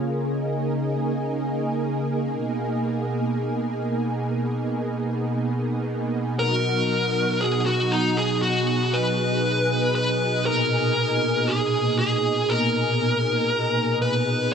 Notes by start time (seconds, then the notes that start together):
Already playing: C#3 A#3 F4 G#4
0.29 D#4
2.32 B2 D#4
6.39 F#3 F#4 A#4
7.41 G#4
7.66 F#4
7.92 D#4
8.17 G#4
8.42 F#4 G#4
8.93 B4
9.95 B4
10.46 A#2 A#4
11.48 G#4
11.99 G#4
12.50 A#4
14.02 B4